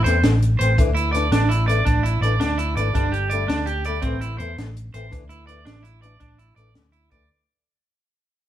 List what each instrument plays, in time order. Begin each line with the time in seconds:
0.04 fingered electric bass E2, steel-string acoustic guitar E3 A3 C4, clean electric guitar C5, snare, closed hi-hat
0.23 fingered electric bass A1, snare, closed hi-hat
0.43 closed hi-hat
0.59 fingered electric bass A1, steel-string acoustic guitar E3 A3 C4, clean electric guitar C5, closed hi-hat
0.78 fingered electric bass D2, steel-string acoustic guitar E3 A3 D4, kick, closed hi-hat
0.95 clean electric guitar E4, closed hi-hat
1.13 steel-string acoustic guitar E3 A3 D4, clean electric guitar D5, closed hi-hat
1.31 fingered electric bass A1, clean electric guitar D4, snare, closed hi-hat
1.49 clean electric guitar E4, closed hi-hat
1.67 steel-string acoustic guitar E3 A3 D4, clean electric guitar D5, closed hi-hat
1.85 fingered electric bass A1, clean electric guitar D4, kick, closed hi-hat
2.03 clean electric guitar E4, closed hi-hat
2.21 fingered electric bass A1, steel-string acoustic guitar E3 A3 D4, clean electric guitar D5, closed hi-hat
2.40 fingered electric bass D2, clean electric guitar D4, snare, closed hi-hat
2.58 clean electric guitar E4, closed hi-hat
2.76 fingered electric bass G#1, steel-string acoustic guitar E3 A3 D4, clean electric guitar D5, closed hi-hat
2.93 fingered electric bass G1, steel-string acoustic guitar G3 A3 D4, clean electric guitar D4, kick, closed hi-hat
3.12 clean electric guitar G4, closed hi-hat
3.30 steel-string acoustic guitar G3 A3 D4, clean electric guitar D5, closed hi-hat
3.48 fingered electric bass D2, clean electric guitar D4, snare, closed hi-hat
3.66 clean electric guitar G4, closed hi-hat
3.85 steel-string acoustic guitar G3 A3, clean electric guitar D5, closed hi-hat
3.89 steel-string acoustic guitar D4
4.02 fingered electric bass A1, steel-string acoustic guitar E3 A3 C4, clean electric guitar C4, kick, closed hi-hat
4.21 clean electric guitar E4, closed hi-hat
4.38 fingered electric bass E2, steel-string acoustic guitar E3 A3, clean electric guitar C5, muted steel-string acoustic guitar stroke, closed hi-hat
4.57 fingered electric bass A1, snare, closed hi-hat
4.77 closed hi-hat
4.94 fingered electric bass A1, steel-string acoustic guitar E3 A3 C4, clean electric guitar C5, closed hi-hat
5.11 fingered electric bass D2, steel-string acoustic guitar E3 A3 D4, kick, closed hi-hat
5.29 clean electric guitar E4, closed hi-hat
5.47 steel-string acoustic guitar E3 A3 D4, clean electric guitar D5, closed hi-hat
5.65 fingered electric bass A1, clean electric guitar D4, snare, closed hi-hat
5.83 clean electric guitar E4, closed hi-hat
6.02 steel-string acoustic guitar E3 D4, clean electric guitar D5, muted steel-string acoustic guitar stroke, closed hi-hat
6.20 fingered electric bass A1, clean electric guitar D4, kick, closed hi-hat
6.38 clean electric guitar E4, closed hi-hat
6.56 fingered electric bass A1, steel-string acoustic guitar E3 A3 D4, clean electric guitar D5, closed hi-hat
6.75 fingered electric bass D2, snare, closed hi-hat
6.92 clean electric guitar E4, closed hi-hat
7.11 fingered electric bass D2, steel-string acoustic guitar E3 A3 D4, clean electric guitar D5, kick, closed hi-hat